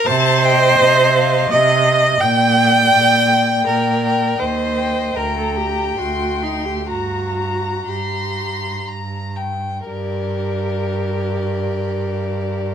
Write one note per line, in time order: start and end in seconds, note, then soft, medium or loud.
0.06 0.71 C3 medium
0.06 1.50 C5 loud
0.06 0.46 A5 medium
0.43 1.14 D#5 medium
0.43 0.82 G5 medium
0.79 1.42 C3 medium
0.79 1.17 D#5 medium
1.16 1.84 D#5 medium
1.16 1.53 F5 medium
1.50 2.12 C3 medium
1.50 2.22 D#5 loud
1.50 2.24 D#5 medium
1.87 2.20 D#5 medium
2.20 2.85 A#2 medium
2.20 3.65 D5 medium
2.20 2.56 G5 medium
2.20 3.66 G5 loud
2.59 3.29 G5 medium
2.93 3.57 A#2 medium
3.31 4.01 G5 medium
3.66 4.30 A#2 medium
3.66 4.41 A#4 medium
3.66 4.39 D5 medium
4.04 4.39 G5 soft
4.38 5.06 D#2 medium
4.38 5.18 C5 medium
4.38 5.17 D#5 medium
4.77 5.14 G5 soft
5.15 5.87 D2 soft
5.15 5.35 A#4 medium
5.15 6.89 G5 medium
5.15 5.54 A#5 soft
5.38 5.58 A4 medium
5.55 6.00 G4 medium
5.55 5.96 A#5 soft
5.98 6.77 D2 soft
5.98 6.44 F#4 soft
5.98 6.40 C6 soft
6.41 6.67 D#4 soft
6.41 6.87 C6 soft
6.65 6.88 G4 soft
6.88 7.75 G2 soft
6.88 7.90 F#4 medium
6.88 9.37 A#5 soft
6.88 7.37 A#5 soft
7.37 7.76 A#5 soft
7.87 8.74 G2 soft
7.87 8.87 G4 soft
7.87 8.89 C6 soft
8.87 9.77 G2 soft
8.87 9.38 A#5 soft
9.36 9.86 G5 soft
9.87 12.74 G2 soft
9.87 12.74 G4 medium
9.87 12.74 A#4 soft
9.87 12.74 D5 soft